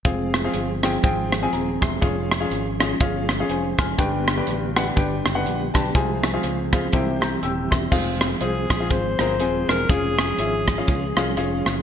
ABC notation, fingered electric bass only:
X:1
M:4/4
L:1/8
Q:"Swing" 1/4=122
K:Fm
V:1 name="Fingered electric bass" clef=bass
F,,,2 G,,,2 A,,,2 E,,, =E,,, | F,,,2 A,,,2 G,,,2 F,,, _G,,, | G,,,2 =A,,,2 G,,, _G,,, B,,, =B,,, | C,,2 D,,2 C,,2 E,,, =E,,, |
F,,,2 C,, B,,, A,,, G,,, E,,, =E,,, | F,,,2 A,,,2 D,, C,, F,,, _G,,, |]